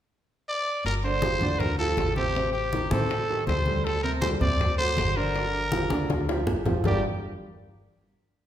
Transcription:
0.49 D5
0.85 G1 A#4, high bongo, high conga
1.04 D3 D4 C5 D5, high conga
1.22 F3 F4 G4, high bongo, high conga
1.41 D2 D3 D4 D5, high bongo, high conga, low conga
1.60 A#4, high bongo, high conga, low conga
1.78 F3 F4 G4 A4, high bongo, high conga
1.97 A1, high bongo, low bongo, high conga
2.16 C3 C4 G4 C5, high bongo, high conga
2.35 C3 C4 C5, high bongo, high conga
2.53 G4, high conga
2.73 D#3 D#4 G4, high bongo, high conga
2.91 A2 C3 C4 A4 C5, high bongo, high conga
3.10 high bongo, high conga
3.29 D#3 D#4 G4, high bongo, high conga
3.47 D2 C5, high bongo, low bongo, high conga
3.66 G3 G4 A4, high bongo, high conga
3.84 A4, high bongo, high conga
4.03 C3 C4 A#4 C5, high conga
4.21 G3 G4 A4 C5, high bongo, high conga
4.41 D2 C3 C4 C5 D5, high bongo, high conga, low conga
4.60 high bongo, high conga, low conga
4.78 F#3 F#4 A4 C5, high bongo, high conga
4.97 G1, high bongo, low bongo, high conga
5.17 D3 D4 A#4 D5, high bongo
5.34 D3 D4 D5, high bongo, high conga
5.53 high conga
5.72 F3 F4 G4, high bongo, high conga
5.90 D2 D3 D4 D5, high bongo, high conga
6.10 high bongo, high conga
6.29 F3 F4 G4, high bongo
6.47 G1, low conga
6.66 F3 F4 G4, low bongo, low conga
6.84 G1 G3 D4 F4 G4 A#4 D5, low bongo, low conga

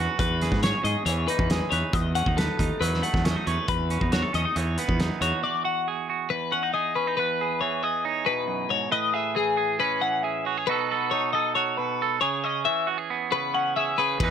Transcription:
Already playing: E2 F#3 C#4 B4
0.00 F#4
0.19 E2 B4, kick, closed hi-hat
0.42 G#4, snare, closed hi-hat
0.52 G#2, kick, snare
0.63 C#5, snare, closed hi-hat
0.84 G#2 G#4 D#5, closed hi-hat
1.05 E2 E3 C#5, closed hi-hat
1.28 D#4 B4, closed hi-hat
1.39 E2, kick
1.50 G#4, snare, closed hi-hat
1.71 E2 B4 C#5, closed hi-hat
1.93 E2 D#5, kick, closed hi-hat
2.15 C#4 F#5, closed hi-hat
2.26 D#2 D#4, kick
2.37 A4 B4, snare, closed hi-hat
2.59 D#2 D#4, kick, closed hi-hat
2.80 E2 F#3 B4, closed hi-hat
2.94 snare
3.02 A3 F#5, closed hi-hat
3.14 E2, kick, snare
3.25 C#4 D#5, snare, closed hi-hat
3.36 D#4
3.46 E2 B4 C#5, closed hi-hat
3.68 E2 B4, kick, closed hi-hat
3.90 C#4, closed hi-hat
4.01 E2 D#4, kick
4.12 F#4 C#5, snare, closed hi-hat
4.22 A4
4.33 E2 C#4 D#5, closed hi-hat
4.45 D#4
4.56 E2 E3 C#5, closed hi-hat
4.78 B3 B4, closed hi-hat
4.88 E2, kick
5.00 D#4, snare, closed hi-hat
5.21 E2 F#4 C#5, closed hi-hat
5.43 E2 D5
5.64 F#4 F#5
5.88 G#4
6.10 F#4
6.30 E2 B4
6.52 C#4 F#5
6.63 D#4
6.74 G#4 D#5
6.95 C#4 B4
7.07 D#4
7.17 E2 B4
7.41 G#4
7.61 E3 C#5
7.83 G#4 D#5
8.05 D#4 C#5
8.25 B2 B4
8.47 F#2
8.69 G#2 C#5
8.91 A2 B4 D#5
9.14 G#4 E5
9.35 E3 G#4
9.57 G#4
9.80 C#4 B4
10.01 E3 F#5
10.23 G#4 E5
10.45 F#4 C#5
10.57 G#4
10.67 B2 D#4 F#4 A4 B4
10.92 A4
11.11 D#4 C#5
11.33 A4 D#5
11.55 F#4 C#5
11.77 B2 B4
12.02 A4
12.21 C#3 G#4 C#5
12.44 C#4 D#5
12.65 E3 E5
12.87 F#4
12.98 G#4
13.10 B3
13.31 C#3 B4
13.54 C#4 F#5
13.76 G#4 E5
13.98 C#3 G#4 B4
14.20 E2 E3 D#4 G#4 B4, kick, ride
14.25 B4

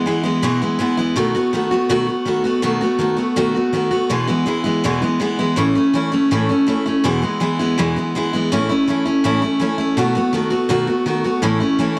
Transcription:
0.06 E3 G#3 B3 E4
0.24 E3 G#3 B3 E4
0.42 E2 B2 E3 G#3 B3 E4
0.62 E3 G#3 B3 E4
0.79 E3 G#3 B3 E4
0.97 E3 G#3 B3 E4
1.16 B2 D#3 A3 B3 F#4
1.35 A3 B3 F#4
1.53 D#3 A3 B3 F#4
1.71 A3 B3 F#4
1.89 B2 D#3 A3 B3 F#4
2.07 A3 B3 F#4
2.25 D#3 A3 B3 F#4
2.44 A3 B3 F#4
2.62 B2 D#3 A3 B3 F#4
2.81 A3 B3 F#4
2.99 D#3 A3 B3 F#4
3.17 A3 B3 F#4
3.36 B2 D#3 A3 B3 F#4
3.54 A3 B3 F#4
3.73 D#3 A3 B3 F#4
3.91 A3 B3 F#4
4.09 E2 B2 E3 G#3 B3 E4
4.27 E3 G#3 B3 E4
4.46 E3 G#3 B3 E4
4.64 E3 G#3 B3 E4
4.84 E2 B2 E3 G#3 B3 E4
5.02 E3 G#3 B3 E4
5.20 E3 G#3 B3 E4
5.39 E3 G#3 B3 E4
5.56 A2 E3 A3 C#4 E4
5.75 A3 C#4 E4
5.94 E3 A3 C#4 E4
6.12 A3 C#4 E4
6.31 A2 E3 A3 C#4 E4
6.49 A3 C#4 E4
6.67 E3 A3 C#4 E4
6.86 A3 C#4 E4
7.04 E2 B2 E3 G#3 B3 E4
7.22 E3 G#3 B3 E4
7.40 E3 G#3 B3 E4
7.59 E3 G#3 B3 E4
7.78 E2 B2 E3 G#3 B3 E4
7.96 E3 G#3 B3 E4
8.15 E3 G#3 B3 E4
8.33 E3 G#3 B3 E4
8.52 A2 E3 A3 C#4 E4
8.69 A3 C#4 E4
8.88 E3 A3 C#4 E4
9.05 A3 C#4 E4
9.24 A2 E3 A3 C#4 E4
9.42 A3 C#4 E4
9.60 E3 A3 C#4 E4
9.78 A3 C#4 E4
9.97 B2 D#3 A3 B3 F#4
10.15 A3 B3 F#4
10.33 D#3 A3 B3 F#4
10.50 A3 B3 F#4
10.69 B2 D#3 A3 B3 F#4
10.87 A3 B3 F#4
11.06 D#3 A3 B3 F#4
11.24 A3 B3 F#4
11.42 A2 E3 A3 C#4 E4
11.60 A3 C#4 E4
11.79 E3 A3 C#4 E4

